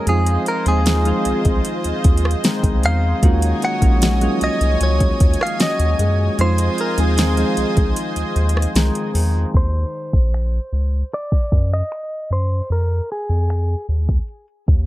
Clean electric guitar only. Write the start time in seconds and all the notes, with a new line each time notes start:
0.09 G#4
0.48 A#4
0.68 G#4
2.86 F5
3.65 F#5
4.44 D#5
4.83 C#5
5.43 F5
5.62 D#5
6.41 C5
6.81 A#4
7.00 G#4
9.57 C5
11.14 D5
11.74 D#5
12.33 C5
12.72 A#4
13.12 G#4